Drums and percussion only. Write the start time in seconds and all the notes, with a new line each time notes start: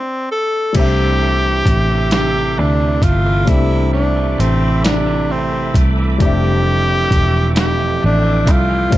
0.74 kick, closed hi-hat, crash
1.66 kick, closed hi-hat
2.11 snare, closed hi-hat
3.02 kick, closed hi-hat
3.47 kick, closed hi-hat
4.40 closed hi-hat
4.84 snare, closed hi-hat
5.74 kick, closed hi-hat
6.20 kick, closed hi-hat
7.11 kick, closed hi-hat
7.56 snare, closed hi-hat
8.47 kick, closed hi-hat
8.92 kick, closed hi-hat